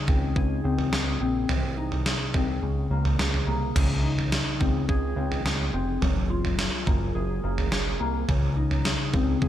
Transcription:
0.00 1.48 C#3 medium
0.00 1.55 D#4 medium
0.00 0.35 G#4 medium
0.07 0.33 C#2 loud
0.07 0.63 C4 medium
0.07 kick medium
0.07 floor tom medium
0.36 0.61 C#2 medium
0.36 0.92 G#4 medium
0.36 kick medium
0.64 0.89 C#2 loud
0.64 1.19 C4 soft
0.79 floor tom medium
0.92 1.18 C#2 loud
0.92 2.05 G#4 medium
0.92 snare loud
1.21 1.46 A#1 medium
1.21 1.55 C4 medium
1.49 2.17 C2 medium
1.49 2.62 C3 medium
1.49 floor tom loud
1.77 2.68 D#4 medium
1.92 floor tom medium
2.06 2.94 G#4 medium
2.06 snare medium
2.34 2.59 C2 loud
2.34 2.68 C4 soft
2.34 kick medium
2.34 floor tom medium
2.63 2.87 C#2 medium
2.63 3.74 C#3 medium
2.91 3.16 C#2 loud
2.91 3.46 A#3 soft
3.05 floor tom medium
3.19 3.44 C#2 loud
3.19 4.32 G#4 medium
3.19 snare loud
3.34 floor tom medium
3.47 3.72 C2 medium
3.47 3.81 A#3 medium
3.75 4.43 C#2 medium
3.75 6.02 C#3 medium
3.75 kick loud
3.75 floor tom loud
3.75 crash loud
4.03 6.07 D#4 medium
4.19 floor tom medium
4.32 4.88 G#4 medium
4.32 snare loud
4.60 4.86 C#2 loud
4.60 5.16 C4 soft
4.60 kick medium
4.60 floor tom medium
4.89 5.14 C#2 medium
4.89 5.45 G#4 medium
4.89 kick medium
5.16 5.42 C#2 loud
5.16 5.73 C4 soft
5.32 floor tom medium
5.45 5.70 C#2 loud
5.45 6.58 G#4 medium
5.45 snare loud
5.73 5.98 F1 medium
5.73 6.08 C4 medium
6.01 6.69 F#1 medium
6.01 8.28 F#3 medium
6.01 floor tom loud
6.30 8.56 F4 medium
6.45 floor tom medium
6.58 7.15 G#4 medium
6.58 snare loud
6.87 7.12 F#1 loud
6.87 7.42 A#3 medium
6.87 kick medium
6.87 floor tom medium
7.15 7.40 F#1 medium
7.15 7.71 G#4 medium
7.44 7.69 F#1 loud
7.44 7.99 A#3 medium
7.58 floor tom medium
7.71 7.97 F#1 loud
7.71 8.85 G#4 medium
7.71 snare loud
8.00 8.25 C2 medium
8.00 8.34 A#3 medium
8.29 8.96 C#2 medium
8.29 9.48 C#3 medium
8.29 kick loud
8.29 floor tom loud
8.57 9.48 D#4 medium
8.71 floor tom medium
8.85 9.42 G#4 medium
8.85 snare loud
9.13 9.39 C#2 loud
9.13 9.48 C4 medium
9.13 kick medium
9.13 floor tom medium
9.42 9.48 C#2 medium
9.42 9.48 G#4 medium
9.42 kick medium

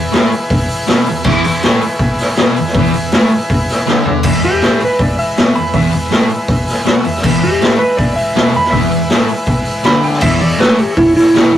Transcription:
0.00 1.22 E4 medium
0.00 1.22 G#4 medium
0.00 1.22 B4 medium
0.12 0.31 A2 loud
0.12 0.31 A3 loud
0.12 snare loud
0.12 open hi-hat medium
0.32 open hi-hat medium
0.50 kick loud
0.50 open hi-hat medium
0.68 open hi-hat medium
0.87 1.06 B2 medium
0.87 1.06 B3 medium
0.87 snare loud
0.87 open hi-hat medium
1.06 1.23 E2 medium
1.06 open hi-hat medium
1.23 1.44 E2 medium
1.23 4.19 E4 medium
1.23 4.20 G#4 medium
1.23 4.20 B4 medium
1.23 kick loud
1.23 crash loud
1.27 1.44 E3 loud
1.44 1.60 E2 medium
1.44 open hi-hat medium
1.63 1.82 A2 medium
1.63 1.82 A3 loud
1.63 snare loud
1.63 open hi-hat medium
1.81 open hi-hat medium
1.99 kick medium
1.99 open hi-hat medium
2.18 snare soft
2.18 open hi-hat medium
2.36 2.56 B2 medium
2.36 2.56 B3 loud
2.36 snare loud
2.36 open hi-hat medium
2.56 2.72 E2 medium
2.56 open hi-hat medium
2.67 snare soft
2.75 2.93 E2 loud
2.75 2.94 E3 medium
2.75 kick loud
2.75 open hi-hat medium
2.93 3.09 E2 medium
2.93 open hi-hat medium
3.11 3.31 A2 medium
3.11 3.31 A3 loud
3.11 snare loud
3.11 open hi-hat medium
3.31 open hi-hat medium
3.50 kick medium
3.50 open hi-hat medium
3.69 snare soft
3.69 open hi-hat medium
3.87 4.24 D3 medium
3.87 4.25 D4 loud
3.87 snare medium
4.05 floor tom medium
4.23 4.43 E2 medium
4.23 4.44 E3 medium
4.23 7.20 G#3 medium
4.23 7.19 E4 medium
4.23 7.20 B4 medium
4.23 kick loud
4.23 crash loud
4.42 4.59 E2 medium
4.42 4.80 G4 loud
4.42 open hi-hat medium
4.61 4.81 A2 medium
4.61 4.81 A3 medium
4.61 snare loud
4.61 open hi-hat medium
4.80 open hi-hat medium
4.85 5.01 B4 medium
4.99 5.18 D5 medium
4.99 kick loud
4.99 open hi-hat medium
5.18 5.55 E5 medium
5.18 open hi-hat medium
5.37 5.55 B2 loud
5.37 5.56 B3 loud
5.37 snare loud
5.37 open hi-hat medium
5.55 5.71 E2 medium
5.55 5.73 B5 medium
5.55 open hi-hat medium
5.74 5.91 E2 medium
5.74 5.93 E3 loud
5.74 6.11 E5 medium
5.74 kick loud
5.74 open hi-hat medium
5.91 6.07 E2 medium
5.91 open hi-hat medium
6.11 6.29 A2 medium
6.11 6.29 A3 loud
6.11 snare loud
6.11 open hi-hat medium
6.29 open hi-hat medium
6.48 kick loud
6.48 open hi-hat medium
6.67 6.85 G#5 medium
6.67 snare soft
6.67 open hi-hat medium
6.85 7.04 B2 loud
6.85 7.04 B3 loud
6.85 7.04 F#5 medium
6.85 snare loud
6.85 open hi-hat medium
7.04 7.20 E2 medium
7.04 7.22 E5 medium
7.04 open hi-hat medium
7.15 snare soft
7.23 7.41 E2 medium
7.23 7.42 E3 medium
7.23 10.20 G#3 medium
7.23 10.19 E4 medium
7.23 10.20 B4 medium
7.23 kick loud
7.23 crash loud
7.43 7.57 E2 medium
7.43 7.78 G4 loud
7.43 open hi-hat medium
7.61 7.79 A2 medium
7.61 7.80 A3 loud
7.61 snare loud
7.61 open hi-hat medium
7.79 7.97 B4 loud
7.79 open hi-hat medium
7.97 8.16 D5 medium
7.97 kick loud
7.97 open hi-hat medium
8.16 8.53 E5 medium
8.16 open hi-hat medium
8.36 8.54 B2 loud
8.36 8.54 B3 loud
8.36 snare loud
8.36 open hi-hat medium
8.54 8.70 E2 medium
8.54 8.73 B5 medium
8.54 open hi-hat medium
8.64 snare soft
8.71 8.91 E2 medium
8.71 9.08 E5 medium
8.71 kick loud
8.71 open hi-hat medium
8.76 8.93 E3 loud
8.91 9.07 E2 medium
8.91 open hi-hat medium
9.09 9.29 A2 medium
9.09 9.29 A3 loud
9.09 snare loud
9.09 open hi-hat medium
9.28 open hi-hat medium
9.45 kick loud
9.45 open hi-hat medium
9.65 open hi-hat medium
9.84 10.21 D3 loud
9.84 10.22 D4 loud
9.84 10.03 B5 loud
9.84 snare loud
9.84 open hi-hat medium
10.03 10.22 G5 loud
10.03 open hi-hat medium
10.13 snare soft
10.21 10.39 E2 medium
10.21 10.40 E3 medium
10.21 11.58 E4 medium
10.21 11.58 G#4 medium
10.21 11.58 C#5 medium
10.21 10.40 E5 medium
10.21 kick loud
10.21 crash loud
10.41 10.56 E2 medium
10.41 10.59 D5 loud
10.41 open hi-hat medium
10.58 10.77 A2 medium
10.58 10.78 A3 loud
10.58 10.78 B4 loud
10.58 snare loud
10.58 open hi-hat medium
10.78 10.97 G4 medium
10.78 open hi-hat medium
10.97 11.15 E4 loud
10.97 kick loud
10.97 open hi-hat medium
11.17 11.58 E4 loud
11.17 snare soft
11.17 open hi-hat medium
11.34 11.52 B2 medium
11.34 11.53 B3 loud
11.34 snare loud
11.34 open hi-hat medium
11.53 11.58 E2 medium
11.53 open hi-hat medium

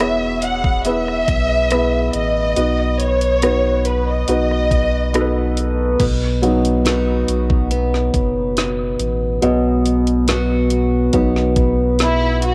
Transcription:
0.00 1.24 E1 loud
0.00 0.39 B2 soft
0.00 0.85 B3 medium
0.00 0.86 E4 medium
0.00 0.85 G#4 medium
0.00 0.86 B4 medium
0.00 0.81 C#5 medium
0.00 0.43 E5 medium
0.00 cross-stick medium
0.00 closed hi-hat medium
0.42 0.86 F#5 medium
0.42 closed hi-hat medium
0.64 kick medium
0.85 1.67 B3 medium
0.85 1.67 E4 medium
0.85 1.67 G#4 medium
0.85 1.67 B4 medium
0.85 2.10 E5 medium
0.85 closed hi-hat medium
1.08 cross-stick soft
1.28 2.10 B1 medium
1.28 kick medium
1.28 closed hi-hat medium
1.71 2.52 B3 medium
1.71 2.52 E4 medium
1.71 2.53 G#4 medium
1.71 2.53 B4 medium
1.71 cross-stick medium
1.71 closed hi-hat medium
2.13 2.54 A1 medium
2.13 3.00 D#5 medium
2.13 closed hi-hat medium
2.56 4.24 B1 medium
2.56 3.38 B3 medium
2.56 3.38 D#4 soft
2.56 3.38 F#4 medium
2.56 3.38 B4 medium
2.56 closed hi-hat medium
3.00 3.86 C#5 medium
3.00 closed hi-hat soft
3.21 closed hi-hat soft
3.42 4.24 B3 medium
3.42 4.24 D#4 medium
3.42 4.24 F#4 medium
3.42 4.24 B4 medium
3.42 cross-stick medium
3.42 closed hi-hat medium
3.85 4.08 B4 medium
3.85 closed hi-hat medium
4.09 5.58 D#5 medium
4.28 5.96 B1 medium
4.28 5.10 B3 medium
4.28 5.10 D#4 medium
4.28 5.10 F#4 medium
4.28 5.10 B4 medium
4.28 closed hi-hat medium
4.51 cross-stick soft
4.71 kick medium
4.71 closed hi-hat medium
5.14 5.95 B3 medium
5.14 5.95 D#4 medium
5.14 5.96 F#4 medium
5.14 5.21 A4 medium
5.14 cross-stick medium
5.14 closed hi-hat medium
5.21 5.99 B4 medium
5.57 closed hi-hat medium
6.00 7.24 B1 medium
6.00 9.41 B2 medium
6.00 kick loud
6.00 closed hi-hat medium
6.00 crash medium
6.42 9.40 F#3 medium
6.42 9.41 B3 soft
6.42 9.82 D#4 soft
6.42 closed hi-hat medium
6.65 closed hi-hat medium
6.85 7.70 B3 medium
6.85 10.28 D#4 medium
6.85 10.28 F#4 medium
6.85 snare medium
6.85 closed hi-hat medium
7.28 8.10 B1 loud
7.28 closed hi-hat medium
7.50 kick medium
7.71 10.27 B3 medium
7.71 closed hi-hat medium
7.94 snare soft
8.14 8.96 F#1 medium
8.14 kick medium
8.14 closed hi-hat medium
8.57 snare medium
8.57 closed hi-hat medium
8.99 9.39 A1 medium
8.99 closed hi-hat medium
9.42 11.10 B1 medium
9.42 12.54 B2 medium
9.42 11.12 F#3 soft
9.42 11.12 B3 soft
9.42 12.54 D#5 medium
9.42 closed hi-hat medium
9.86 closed hi-hat medium
10.07 closed hi-hat medium
10.28 11.13 B3 medium
10.28 12.54 F#4 medium
10.28 snare medium
10.28 closed hi-hat medium
10.70 closed hi-hat medium
11.13 12.54 B1 medium
11.13 11.53 F#3 soft
11.13 11.53 B3 soft
11.13 12.54 B3 medium
11.13 11.53 D#4 soft
11.13 kick medium
11.13 closed hi-hat medium
11.36 snare soft
11.56 kick medium
11.56 closed hi-hat medium
11.99 12.40 E4 medium
11.99 snare medium
11.99 closed hi-hat medium
12.42 12.54 F#4 medium
12.42 closed hi-hat medium

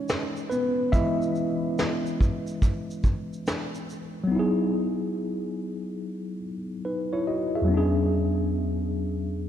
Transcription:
0.00 0.89 E3 medium
0.00 0.89 G#3 medium
0.00 0.47 C#4 medium
0.00 0.54 C#5 medium
0.09 snare loud
0.09 closed hi-hat medium
0.09 shaker medium
0.37 shaker soft
0.50 0.71 B3 medium
0.50 0.69 B4 medium
0.50 shaker soft
0.92 1.54 E3 medium
0.92 1.55 G#3 medium
0.92 3.43 E4 medium
0.92 1.55 D#5 medium
0.92 3.42 E5 loud
0.92 kick loud
0.92 closed hi-hat medium
0.92 shaker medium
1.22 shaker soft
1.35 shaker soft
1.79 snare loud
1.79 closed hi-hat medium
1.79 shaker medium
2.06 shaker soft
2.21 kick medium
2.21 shaker soft
2.47 shaker medium
2.62 kick medium
2.62 closed hi-hat medium
2.62 shaker medium
2.91 shaker soft
3.04 kick medium
3.04 shaker soft
3.33 shaker soft
3.47 snare loud
3.47 closed hi-hat medium
3.47 shaker medium
3.75 shaker soft
3.90 shaker soft
4.24 6.77 F#3 medium
4.24 6.79 B3 medium
4.32 6.39 D#4 medium
4.32 6.41 E4 medium
4.39 6.43 G#4 medium
6.85 7.12 D#4 soft
6.85 7.11 B4 medium
7.13 7.27 E4 medium
7.13 7.26 C#5 medium
7.27 7.54 F#4 soft
7.27 7.54 D#5 medium
7.55 7.76 G#4 soft
7.55 7.95 E5 medium
7.62 9.49 E2 medium
7.62 9.49 F#3 medium
7.68 9.49 B3 medium
7.68 9.49 C#4 medium
7.74 9.49 D4 medium
7.74 9.49 G#4 medium

